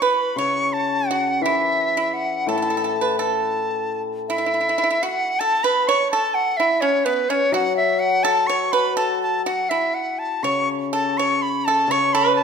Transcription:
0.02 0.35 B4 medium
0.02 0.39 B5 medium
0.36 1.43 C#3 soft
0.36 1.05 C#5 medium
0.36 0.75 C#6 medium
0.73 1.10 A5 medium
1.08 1.42 F#4 medium
1.08 1.44 F#5 medium
1.41 3.54 E3 medium
1.41 2.15 E5 medium
1.46 1.93 E4 medium
1.97 2.45 E4 medium
2.14 2.50 F#5 medium
2.47 4.66 A2 medium
2.47 2.55 A4 medium
2.47 3.19 A5 medium
2.58 2.61 A4 soft
2.62 2.69 A4 soft
2.70 2.76 A4 soft
2.77 2.83 A4 medium
2.84 2.91 A4 soft
3.01 3.18 B4 medium
3.19 4.26 A4 medium
3.19 4.02 A5 medium
4.29 4.37 E4 medium
4.29 5.04 E5 medium
4.38 4.45 E4 soft
4.46 4.53 E4 soft
4.54 4.59 E4 soft
4.61 4.68 E4 soft
4.69 4.76 E4 soft
4.78 4.82 E4 medium
4.83 4.89 E4 soft
4.90 4.98 E4 medium
5.03 5.37 F#4 medium
5.03 5.41 F#5 medium
5.39 5.63 A4 medium
5.39 5.65 A5 loud
5.64 5.86 B4 medium
5.64 5.89 B5 medium
5.88 6.10 C#5 medium
5.88 6.11 C#6 medium
6.11 6.56 A4 medium
6.11 6.36 A5 medium
6.34 6.58 F#5 medium
6.57 6.81 E4 medium
6.57 6.82 E5 medium
6.81 7.04 C#4 medium
6.81 7.06 C#5 medium
7.05 7.28 B3 medium
7.05 7.31 B4 medium
7.29 7.52 C#4 medium
7.29 7.55 C#5 medium
7.52 9.70 F#3 medium
7.52 8.21 F#4 medium
7.52 7.76 F#5 medium
7.77 8.01 E5 medium
7.99 8.25 F#5 loud
8.23 8.47 A4 medium
8.23 8.48 A5 medium
8.47 8.72 C#5 medium
8.47 8.74 C#6 medium
8.72 8.96 B4 medium
8.72 8.96 B5 medium
8.97 9.42 A4 medium
8.97 9.20 A5 medium
9.22 9.45 A5 medium
9.46 9.69 F#4 medium
9.46 9.71 F#5 medium
9.69 10.41 E4 medium
9.69 9.96 E5 medium
9.94 10.20 F#5 medium
10.19 10.45 A5 medium
10.43 11.87 C#3 soft
10.43 10.67 C#5 medium
10.43 10.69 C#6 medium
10.93 11.16 A4 medium
10.93 11.19 A5 medium
11.18 11.63 C#5 medium
11.18 11.44 C#6 medium
11.42 11.67 B5 medium
11.65 11.89 A4 medium
11.65 11.93 A5 medium
11.88 12.43 C#3 medium
11.88 12.13 C#5 medium
11.88 12.15 C#6 medium
12.13 12.43 B4 medium
12.13 12.35 B5 medium
12.36 12.43 A5 medium

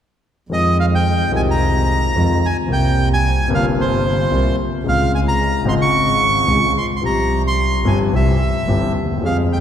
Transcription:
0.50 1.29 F2 medium
0.50 1.28 D#3 soft
0.50 1.29 F3 medium
0.50 1.29 G#3 soft
0.50 1.30 C4 soft
0.50 0.78 D#5 medium
0.54 1.30 F4 medium
0.80 0.86 F5 medium
0.95 1.32 G5 medium
1.32 2.10 C2 medium
1.32 2.10 C3 medium
1.32 2.10 D#3 medium
1.32 2.10 G#3 soft
1.32 2.11 C4 soft
1.32 2.12 F4 medium
1.36 1.41 G#5 medium
1.51 2.47 A#5 medium
2.13 2.37 F2 medium
2.13 2.38 F2 medium
2.13 2.38 D#3 soft
2.13 2.38 F3 medium
2.13 2.38 G#3 soft
2.13 2.38 C4 soft
2.13 2.39 F4 medium
2.46 2.57 G#5 medium
2.66 3.46 C2 medium
2.66 2.68 C3 soft
2.66 3.46 C3 soft
2.66 3.46 G3 soft
2.66 3.47 A#3 soft
2.71 3.47 F4 soft
2.71 3.09 G5 medium
3.13 3.49 G#5 medium
3.48 4.27 G1 medium
3.48 4.27 G2 medium
3.48 4.26 C3 medium
3.48 4.26 G3 soft
3.48 4.27 A#3 medium
3.48 4.28 F4 medium
3.55 3.66 F5 medium
3.81 4.56 C5 medium
4.30 4.53 C2 medium
4.30 4.54 C2 medium
4.30 4.54 C3 medium
4.30 4.54 G3 soft
4.30 4.54 A#3 soft
4.30 4.54 F4 medium
4.84 5.62 C#2 medium
4.84 5.63 C#2 medium
4.84 5.63 C#3 medium
4.84 5.62 G#3 soft
4.84 5.63 C4 soft
4.88 5.64 F4 soft
4.88 5.12 F5 medium
5.15 5.20 G#5 medium
5.28 5.65 A#5 medium
5.64 6.43 G#1 medium
5.64 6.44 G#2 medium
5.64 6.43 C#3 medium
5.64 6.43 G#3 medium
5.64 6.44 C4 medium
5.64 6.45 F4 medium
5.69 5.74 C6 medium
5.82 6.72 C#6 medium
6.46 6.70 C#2 medium
6.46 6.71 C#2 medium
6.46 6.70 C#3 medium
6.46 6.70 G#3 soft
6.46 6.70 C4 soft
6.46 6.70 F4 medium
6.78 6.86 C6 medium
6.96 7.03 C6 medium
7.01 7.80 C2 medium
7.01 7.81 C2 medium
7.01 7.81 C3 medium
7.01 7.80 F3 soft
7.01 7.81 G3 soft
7.01 7.81 C4 soft
7.05 7.82 G4 soft
7.05 7.42 A#5 medium
7.47 7.88 C6 medium
7.84 8.07 G1 medium
7.84 8.08 G1 medium
7.84 8.08 G2 medium
7.84 8.08 F3 medium
7.84 8.08 G3 soft
7.84 8.08 C4 soft
7.84 8.08 G4 medium
7.84 7.99 G#5 medium
8.11 8.34 C2 medium
8.11 8.36 C2 medium
8.11 8.35 C3 medium
8.11 8.35 E3 soft
8.11 8.36 G3 soft
8.11 8.36 C4 soft
8.11 8.36 G4 medium
8.16 8.92 E5 medium
8.66 8.90 G1 medium
8.66 8.91 G1 medium
8.66 8.91 G2 medium
8.66 8.91 E3 soft
8.66 8.91 G3 soft
8.66 8.91 C4 soft
8.66 8.91 G4 medium
8.95 9.21 D#2 soft
9.02 9.09 D2 soft
9.11 9.16 D#2 soft
9.17 9.23 E2 soft
9.21 9.61 F2 medium
9.21 9.61 F3 medium
9.21 9.61 G#3 soft
9.21 9.61 C4 soft
9.26 9.61 G#4 medium
9.26 9.37 F5 medium
9.53 9.58 G5 medium

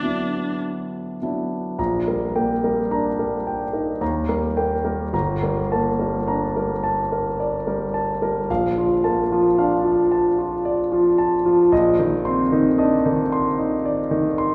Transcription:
0.00 1.81 D2 soft
0.00 0.03 F#3 soft
0.00 1.17 F#3 soft
0.00 0.04 B3 soft
0.00 1.17 B3 soft
0.00 0.03 D4 soft
0.00 0.61 D4 soft
0.00 1.17 D4 soft
0.00 0.04 E4 soft
0.00 1.17 E4 soft
1.22 1.75 F#3 soft
1.22 1.75 B3 soft
1.22 1.75 D4 soft
1.22 1.76 E4 soft
1.78 3.97 A#1 soft
1.78 2.24 A#5 soft
2.08 2.52 G3 soft
2.08 2.52 A#4 soft
2.35 2.80 A#3 soft
2.35 2.80 G5 soft
2.64 3.08 G3 soft
2.64 3.08 A#4 soft
2.91 3.35 D4 soft
2.91 3.35 A#5 soft
3.19 3.63 G3 soft
3.19 3.63 A#4 soft
3.47 3.91 G5 soft
3.73 4.01 D#4 soft
3.73 4.01 A#4 soft
4.01 5.10 D#2 soft
4.01 4.46 A#5 soft
4.29 4.74 G3 soft
4.29 4.74 A#4 soft
4.57 5.03 A#3 soft
4.57 5.02 G5 soft
4.85 5.13 G3 soft
4.85 5.13 A#4 soft
5.13 8.45 G1 medium
5.13 5.59 A#5 soft
5.43 5.88 G3 soft
5.43 5.88 A#4 soft
5.72 6.17 A#3 soft
5.72 6.17 A5 soft
5.99 6.44 G3 soft
5.99 6.44 A#4 soft
6.28 6.72 D4 soft
6.28 6.72 A#5 soft
6.57 7.00 G3 soft
6.57 7.00 A#4 soft
6.84 7.28 A5 soft
7.12 7.56 A#4 soft
7.40 7.83 D5 soft
7.67 8.11 G3 soft
7.67 8.11 A#4 soft
7.94 8.38 A5 soft
8.22 8.49 G3 soft
8.22 8.49 A#4 soft
8.50 11.68 A#1 medium
8.50 8.93 F5 medium
8.78 9.20 F3 soft
8.78 9.20 F4 soft
9.04 9.47 A#3 soft
9.04 9.47 A5 soft
9.32 9.74 F3 soft
9.32 9.74 F4 soft
9.58 10.00 D4 soft
9.58 10.00 F5 soft
9.84 10.26 F3 soft
9.84 10.26 F4 soft
10.12 10.54 A5 soft
10.38 10.81 F4 soft
10.65 11.08 D5 soft
10.91 11.34 F3 soft
10.91 11.35 F4 soft
11.18 11.61 A5 soft
11.45 11.72 F3 soft
11.45 11.72 F4 soft
11.72 14.55 A#1 medium
11.72 12.15 D#5 medium
11.99 12.41 D#3 soft
11.99 12.41 D#4 soft
12.25 12.67 C4 soft
12.25 12.67 C6 medium
12.52 12.94 D#3 soft
12.52 12.94 D#4 soft
12.78 13.20 D4 soft
12.78 13.20 D#5 medium
13.06 13.47 D#3 soft
13.06 13.47 D#4 soft
13.32 13.74 C6 medium
13.59 14.00 D#4 soft
13.85 14.27 D5 medium
14.11 14.53 D#3 soft
14.11 14.53 D#4 soft
14.38 14.55 C6 medium

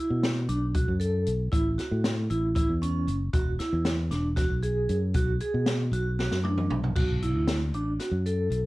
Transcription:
0.00 0.29 E4 medium
0.10 0.47 B2 medium
0.23 snare loud
0.23 closed hi-hat medium
0.49 0.85 B1 medium
0.49 0.65 D4 medium
0.49 closed hi-hat medium
0.74 0.91 F#4 medium
0.74 kick medium
0.74 closed hi-hat medium
0.88 1.24 F#2 medium
1.00 1.32 A4 medium
1.00 closed hi-hat medium
1.26 1.51 B1 medium
1.26 closed hi-hat medium
1.52 1.77 A1 medium
1.52 1.68 E4 medium
1.52 kick medium
1.52 closed hi-hat medium
1.78 2.10 F#4 medium
1.78 snare soft
1.78 closed hi-hat medium
1.91 2.28 A2 medium
2.04 snare loud
2.04 closed hi-hat medium
2.30 2.67 A1 medium
2.30 2.46 E4 medium
2.30 closed hi-hat medium
2.55 2.71 E4 medium
2.55 kick loud
2.55 closed hi-hat medium
2.69 3.05 E2 medium
2.82 3.14 C#4 medium
2.82 closed hi-hat medium
3.07 3.32 F#1 medium
3.07 closed hi-hat medium
3.33 3.58 E1 medium
3.33 3.49 F#4 medium
3.33 kick loud
3.33 closed hi-hat medium
3.59 3.91 E4 medium
3.59 snare soft
3.59 closed hi-hat medium
3.73 4.09 E2 medium
3.85 snare loud
3.85 closed hi-hat medium
4.11 4.47 E1 medium
4.11 4.27 D4 medium
4.11 snare soft
4.11 closed hi-hat soft
4.36 4.53 F#4 medium
4.36 kick loud
4.36 snare soft
4.36 closed hi-hat medium
4.50 4.86 B1 medium
4.63 4.95 G#4 medium
4.63 closed hi-hat medium
4.89 5.13 F#2 medium
4.89 closed hi-hat medium
5.14 5.39 B1 medium
5.14 5.31 F#4 medium
5.14 kick medium
5.14 closed hi-hat medium
5.40 5.73 G#4 medium
5.40 closed hi-hat medium
5.54 5.90 B2 medium
5.66 snare loud
5.66 closed hi-hat medium
5.92 6.28 B1 medium
5.92 6.09 F#4 medium
5.92 closed hi-hat medium
6.19 6.35 F#4 medium
6.19 snare medium
6.31 6.67 F#2 medium
6.31 snare soft
6.44 6.76 D4 medium
6.44 high tom medium
6.57 mid tom medium
6.70 6.94 B1 medium
6.70 mid tom medium
6.84 floor tom medium
6.96 7.35 B1 medium
6.96 7.12 F#4 medium
6.96 kick medium
6.96 crash medium
7.22 7.54 E4 medium
7.22 closed hi-hat medium
7.35 7.73 D2 medium
7.47 snare loud
7.47 closed hi-hat medium
7.73 7.97 A1 medium
7.73 7.90 D4 medium
7.73 closed hi-hat soft
8.00 8.15 F#4 medium
8.00 snare soft
8.00 closed hi-hat medium
8.11 8.48 F#2 medium
8.26 8.58 A4 medium
8.26 closed hi-hat medium
8.50 8.63 B1 medium
8.50 closed hi-hat medium

